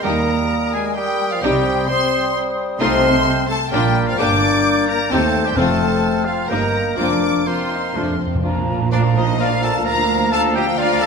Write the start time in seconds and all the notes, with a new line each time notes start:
0.03 D#2 G3 A#3 D#4 G4 A#4 A#5 D#6
0.74 G#3 G#4 G#5
0.96 G3 G4 A#4 G5 D#6
1.32 F3 F4 F5
1.42 C2 C3 G3 C4 D#4 G4 C5 G5 D#6
1.88 G3 C4 C5 C6 D#6
2.79 C2 C3 A3 C4 D#4 F4 C5 D#5 C6 F6
3.48 A3 A4 A5
3.71 A#1 A#2 G3 A#3 D4 F4 G4 D5 G5 F6
4.07 F3 F4 F5
4.18 G1 G2 A#3 D4 G4 D5 D6 G6
4.88 A#3 A#4 A#5
5.10 D#2 A3 C4 D#4 G4 A4 C5 A5 G6
5.45 G3 G4 G5
5.56 F1 F2 A3 C4 F4 A4 C5 A5 F6
6.25 F3 F4 F5
6.48 G1 G2 G3 A#3 D#4 A#4 D#5 A#5 G6
6.96 F1 F2 F3 A#3 C4 D4 F4 C5 D5 D6 F6
7.46 A#3 C4 F4 C5 C6 F6
7.71 D#4
7.95 F1 F2 F3 A3 D4 C5 F6
8.03 F2
8.10 F2
8.20 C4
8.27 F2
8.35 F2
8.44 A#1 A#2 F3 A#3 D4 F4 A#5
8.56 A#3 D4
8.68 D4 F4
8.80 A#3 D4
8.92 F3 D4 F4 A#4 D5 F5 A#5
9.03 A#3 D4
9.16 D4 D#4 F4 C5 D#5
9.28 A#3 D4
9.39 F3 D4 F4 D5 F5 A#5
9.50 A#3 D4
9.62 D4 F4 A4 F5 A5
9.74 A#3 D4
9.85 D2 F3 D4 F4 A#4 F5 A#5
9.96 A#3 D4
10.08 D4 F4
10.20 A#3 D4
10.31 D4 F4 A4 F5 A5
10.43 A#3 D4
10.54 D4 F4 G4 D#5 G5
10.66 A#3 D4
10.78 F3 D4 F4 D5 F5 A#5
10.90 A#3 D4
11.00 D4 F4 A4 F5 A5